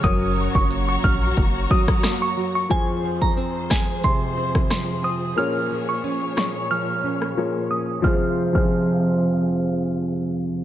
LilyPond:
<<
  \new Staff \with { instrumentName = "Synth bell" } { \time 4/4 \key f \phrygian \tempo 4 = 90 ees'''16 r8 des'''16 r16 des'''16 f'''16 r8. ees'''16 r8 des'''16 r16 des'''16 | aes''8 r16 bes''16 r8 aes''16 r16 c'''8. r16 c'''16 r16 ees'''16 r16 | f'''8 r16 des'''16 r8 des'''16 r16 f'''8. r8. ees'''16 r16 | f'''16 r8 f'''2~ f'''16 r4 | }
  \new Staff \with { instrumentName = "String section" } { \time 4/4 \key f \phrygian << { <des'' bes''>1 | <f aes'>1~ | <f aes'>1 | <f c' aes' f''>1 | } \\ { <ges' des'''>1 | <f, c''>1 | <bes, des''>1 | r1 | } >> }
  \new Staff \with { instrumentName = "Grand piano" } { \time 4/4 \key f \phrygian <ges ges' bes' des''>1 | <f f' aes' c''>1 | <bes f' aes' des''>2. <bes f' aes' des''>4 | <f f' aes' c''>16 r8 <f f' aes' c''>2.~ <f f' aes' c''>16 | }
  \new Staff \with { instrumentName = "Nylon-string guitar" } { \clef bass \time 4/4 \key f \phrygian ges,8 ges8 bes8 des'8 bes8 ges8 bes8 ges8 | <f, c'>8 f8 c'8 aes8 c8 c'8 f8 c'8 | <bes, des'>8 f8 des'8 aes8 f8 des'8 f8 des'8 | <f, c f aes c'>16 r8 <f, c f aes c'>2.~ <f, c f aes c'>16 | }
  \new Staff \with { instrumentName = "Sub bass" } { \clef bass \time 4/4 \key f \phrygian ges,,8. ges,,8. bes,,8 ges,,8 r4. | r1 | r1 | r1 | }
  \new DrumStaff \with { instrumentName = "Drums" } \drummode { \time 4/4 <hh bd>8. bd16 hh8 bd8 <hh bd>8 bd16 <bd ss>16 <hh ss sn>4 | <hh bd>8. bd16 hh8 <bd ss sn>8 <hh bd>8. <bd ss>16 <hh ss sn>4 | r4 r8 <ss sn>8 r8. ss16 r4 | <bd sn>8. <cymc bd>16 r4 r4 r4 | }
>>